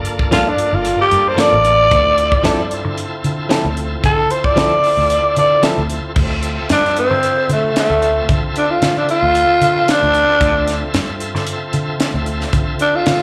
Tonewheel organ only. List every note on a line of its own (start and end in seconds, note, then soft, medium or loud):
0.00 1.87 A#3 medium
0.00 1.87 D4 medium
0.00 1.88 F4 medium
0.00 1.88 A4 medium
1.90 6.12 C4 medium
1.90 6.12 E4 medium
1.90 6.12 F4 medium
1.90 6.13 A4 medium
6.15 10.36 C4 medium
6.15 10.37 F4 medium
6.15 10.38 A4 medium
6.15 10.37 E5 medium
10.39 13.22 C4 medium
10.39 13.22 F4 medium
10.39 13.22 A4 medium
10.39 13.22 E5 medium